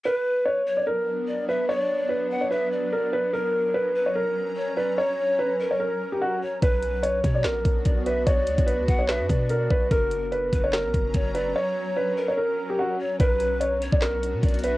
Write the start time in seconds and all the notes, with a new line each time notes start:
0.05 F#3 B3 D4 A#4 B4
0.16 B4
0.45 C#5
0.67 C#5
0.77 D5
0.87 A#4
1.28 D5
1.49 B4 E5
1.69 C#5 D5
2.09 B4
2.31 F#5
2.41 C#5
2.51 B4 E5
2.72 D5
2.93 A#4
3.13 B4
3.33 C#4 A#4 A#5
3.74 B4
3.95 B4
4.06 C#5
4.15 A#4
4.57 C#5
4.77 B4 D5
4.98 C#5
5.39 B4
5.60 A#4
5.71 C#5
5.80 A#4
6.12 G4
6.21 F#4
6.42 C#5
6.62 B1 B3 D4 F#4 B4, kick, closed hi-hat
6.82 closed hi-hat
7.03 C#5, closed hi-hat
7.24 B2 C#5, kick, closed hi-hat
7.34 D5
7.44 A#1 A#4, snare, clap, closed hi-hat
7.65 B1, kick, closed hi-hat
7.85 B1 D5, kick, closed hi-hat
8.06 B4 E5, closed hi-hat
8.27 B1 C#5 D5, kick, closed hi-hat
8.47 D2, closed hi-hat, open hi-hat
8.58 B1, kick, closed hi-hat
8.67 B4, closed hi-hat
8.79 D2
8.88 B1 F#5, kick, closed hi-hat
8.99 C#5
9.08 B4 E5, snare, clap, closed hi-hat
9.20 F#2
9.29 B2 D5, kick, closed hi-hat
9.49 A#4, closed hi-hat
9.71 B1 B4, kick
9.91 F#1 F#3 C#4 A#4 A#5, kick, closed hi-hat
10.11 closed hi-hat
10.32 B4, closed hi-hat
10.53 F#1 B4, kick, closed hi-hat
10.64 C#5
10.72 A#4, snare, clap, closed hi-hat
10.84 A#1
10.94 F#1, kick, closed hi-hat
11.14 F#1 C#5, kick, closed hi-hat
11.34 B4 D5, closed hi-hat
11.55 C#5
11.96 B4
12.17 A#4
12.28 C#5
12.37 A#4
12.70 G4
12.79 F#4
12.99 C#5
13.20 B1 B3 D4 F#4 B4, kick, closed hi-hat
13.40 closed hi-hat
13.60 C#5, closed hi-hat
13.82 C#5, closed hi-hat
13.92 B1 D5, kick
14.01 A#4, snare, clap, closed hi-hat
14.23 closed hi-hat
14.33 B2
14.43 B1 D5, kick, closed hi-hat
14.49 closed hi-hat
14.54 closed hi-hat
14.59 closed hi-hat
14.64 B4 E5, closed hi-hat